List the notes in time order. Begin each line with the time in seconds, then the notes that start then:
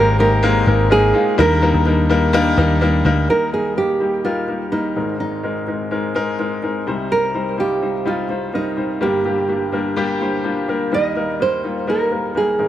Already playing: G#1 G#2 G#3 A#3 C4 D#4 G4 A#4
0.19 G#3 A#3 C4 D#4 G4 A#4
0.43 G#3 A#3 C4 D#4 A#4
0.66 G#1 G#3 A#3 C4 D#4 A#4
0.90 G#3 A#3 C4 D#4 G#4 A#4
1.14 G#3 A#3 C4 D#4 F4
1.38 D#2 D#3 G3 A#3 D4 D#4 A#4
1.62 G3 A#3 D4 D#4 A#4
1.74 D#2
1.86 G3 A#3 D4 D#4 A#4
2.09 G3 A#3 D4 D#4 A#4
2.33 G3 A#3 D4 D#4 A#4
2.57 D#2 G3 A#3 D4 D#4 A#4
2.81 G3 A#3 D4 D#4 A#4
3.05 D2 G3 A#3 D4 D#4 A#4
3.28 D#2 D#3 G3 A#3 D#4 A#4
3.52 G3 A#3 D#4 G#4 A#4
3.76 G3 A#3 D#4 G4 A#4
4.00 G3 A#3 D#4 G4
4.24 G3 A#3 D#4 F4 A#4
4.48 G3 A#3 D#4 A#4
4.72 G3 A#3 D#4 A#4
4.96 G#1 G#2 G#3 C4 D#4 A#4
5.20 D#4
5.43 G#3 C4 D#4 A#4
5.67 G#3 C4 D#4 A#4
5.91 G#3 C4 D#4 A#4
6.15 G#3 C4 D#4 A#4
6.39 G#3 C4 D#4 A#4
6.63 G#3 C4 D#4 A#4
6.87 C2 C3 G3 C4 D#4 C5
7.12 A#4
7.34 G3 C4 D#4 C5
7.58 G3 C4 D#4 F4 G4
7.82 G3 C4 D#4 C5
8.05 G3 C4 D#4 F4
8.29 G3 C4 D#4 C5
8.53 G3 C4 D#4 A#4
8.77 G3 C4 D#4 C5
9.01 G1 G2 G3 A#3 D4 G4 A#4
9.25 G3 A#3 D4 G4
9.48 G3 A#3 D4 G4
9.72 G3 A#3 D4 A#4
9.96 G3 A#3 D4 G4
10.21 G3 A#3 D4 C5
10.44 G3 A#3 D4 F4
10.68 G3 A#3 D4 A#4
10.92 D#2 D#3 G3 A#3 D#4 A#4 D#5
11.16 G3 A#3 D#4 A#4
11.40 G3 A#3 D#4 A#4 C5
11.64 G3 A#3 D#4 F4
11.87 G3 A#3 D#4 A#4
12.11 G3 A#3 D#4 A#4
12.35 G3 A#3 D#4 G#4 A#4
12.59 G#1 G#2 G#3 C4 D#4 A#4